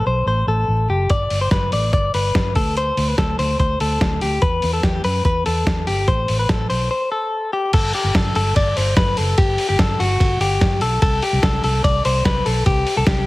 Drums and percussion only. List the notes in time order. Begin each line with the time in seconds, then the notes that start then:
1.10 kick, closed hi-hat
1.30 open hi-hat
1.51 kick, snare, closed hi-hat
1.72 open hi-hat
1.93 kick, closed hi-hat
2.14 open hi-hat
2.35 kick, snare, closed hi-hat
2.55 kick, open hi-hat
2.77 closed hi-hat
2.97 open hi-hat
3.18 kick, snare, closed hi-hat
3.39 open hi-hat
3.59 kick, closed hi-hat
3.80 open hi-hat
4.01 kick, snare
4.21 open hi-hat
4.42 kick, closed hi-hat
4.62 open hi-hat
4.83 kick, snare, closed hi-hat
5.04 open hi-hat
5.25 kick, closed hi-hat
5.46 open hi-hat
5.67 kick, snare, closed hi-hat
5.87 open hi-hat
6.08 kick, closed hi-hat
6.28 open hi-hat
6.49 kick, snare, closed hi-hat
6.70 open hi-hat
7.73 kick, crash, ride
7.93 open hi-hat
8.15 kick, snare, ride
8.35 open hi-hat
8.56 kick, ride
8.77 open hi-hat
8.97 kick, snare, ride
9.17 open hi-hat
9.38 kick, ride
9.58 open hi-hat
9.79 kick, snare, ride
10.00 open hi-hat
10.20 kick, ride
10.41 open hi-hat
10.61 kick, snare, ride
10.81 open hi-hat
11.02 kick, ride
11.22 open hi-hat
11.43 kick, snare, ride
11.64 open hi-hat
11.84 kick, ride
12.05 open hi-hat
12.25 kick, snare, ride
12.46 open hi-hat
12.66 kick, ride
12.87 open hi-hat
13.07 kick, snare, ride